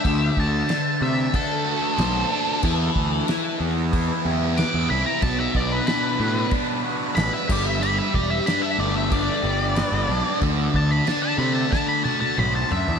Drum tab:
CC |x---x---x---x---|x---x---x---x---|x---x---x---x-x-|x---x---x---x---|
SD |----o-------o---|----o-------o---|----o-------o---|----o-------o---|
T1 |----------------|----------------|----------------|----------------|
T2 |----------------|----------------|----------------|----------------|
FT |----------------|----------------|----------------|----------------|
BD |o-o-----o-------|o-o-----o-------|o-o-----o-----o-|--o-----o-------|

CC |x---x-----------|
SD |----o---o-------|
T1 |----------oo----|
T2 |------------o---|
FT |--------------oo|
BD |o-o-----o-------|